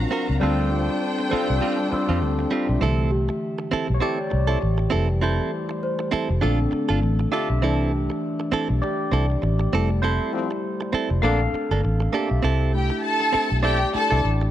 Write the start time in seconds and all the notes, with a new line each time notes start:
Already playing: F#3 C4 D4 F4 F#4 A#4 F5 A#5
0.11 C4 F#4 A#4
0.30 C#2
0.40 D2 G3 C4 D4 F4 A4 C5 G5
0.89 muted clean electric guitar stroke
1.19 muted clean electric guitar stroke
1.29 G3 C4 D4 F4 A4, muted fingered electric bass stroke
1.33 F4
1.49 C2, muted clean electric guitar stroke
1.61 G3 C4 F4
1.89 G3 C4 D4 F4 A4, muted clean electric guitar stroke, muted fingered electric bass stroke
2.09 F2 G3 C4 F4
2.22 D2, muted clean electric guitar stroke
2.39 muted clean electric guitar stroke
2.51 G3 C4 F4 G4 E5
2.69 B1, muted clean electric guitar stroke
2.81 C2 D3 E3 A3 C4 E4 A4
3.11 G4
3.29 muted clean electric guitar stroke
3.59 muted clean electric guitar stroke
3.71 C4 E4 A4, muted fingered electric bass stroke
3.90 B1
3.94 C#5
4.00 C4 E4 G4 A4 D5
4.30 C2, muted clean electric guitar stroke
4.47 C4 E4 A4
4.61 A1, muted clean electric guitar stroke
4.78 muted clean electric guitar stroke
4.90 F1 E3 G3 A3 C4 E4 A4
5.21 C4 E4 A4 C5
5.69 muted clean electric guitar stroke
5.83 C5
5.99 muted clean electric guitar stroke
6.11 C4 E4 A4, muted fingered electric bass stroke
6.30 F1
6.41 A#1 D3 A3 C4 D4 F4 A4
6.71 muted clean electric guitar stroke
6.89 G1 D4 F4 A4
7.02 A1, muted clean electric guitar stroke
7.19 muted clean electric guitar stroke
7.32 D4 F4 G4 A4 E5
7.50 B1, muted clean electric guitar stroke
7.62 C2 E3 A3 C4 D4 E4 A4
8.10 muted clean electric guitar stroke
8.40 muted clean electric guitar stroke
8.52 C4 E4 A4, muted fingered electric bass stroke
8.69 B1, muted clean electric guitar stroke
8.82 G4 D5, muted clean electric guitar stroke
9.12 C2 C4 E4 A4
9.30 muted clean electric guitar stroke
9.42 A1, muted clean electric guitar stroke
9.60 muted clean electric guitar stroke
9.72 F1 G3 A3 C4 E4 A4
9.90 muted clean electric guitar stroke
10.02 C4 E4 A4 C5
10.32 F3 A3 C4
10.51 muted clean electric guitar stroke
10.81 muted clean electric guitar stroke
10.93 C4 E4 A4, muted fingered electric bass stroke
11.10 F1, muted clean electric guitar stroke
11.22 A#1 D3 A3 A#3 C4 D4 A4 F5
11.53 muted fingered electric bass stroke, muted clean electric guitar stroke
11.71 G1 A#3 D4 A4
11.84 A1, muted clean electric guitar stroke
12.00 muted clean electric guitar stroke
12.12 A#3 D4 G4 A4 E5
12.30 B1, muted clean electric guitar stroke
12.43 C2 C4 E4 A4
12.74 A3 D4 E4 G4 G5
12.90 muted clean electric guitar stroke
13.04 A4 A5
13.20 muted clean electric guitar stroke
13.33 C4 E4 A4, muted fingered electric bass stroke
13.50 B1, muted clean electric guitar stroke
13.63 C4 E4 G4 A4 D5 G5
13.93 A3 D4 E4 A4 A5, muted clean electric guitar stroke, muted fingered electric bass stroke
14.11 C2 C4 E4 A4
14.24 A1, muted clean electric guitar stroke
14.41 muted clean electric guitar stroke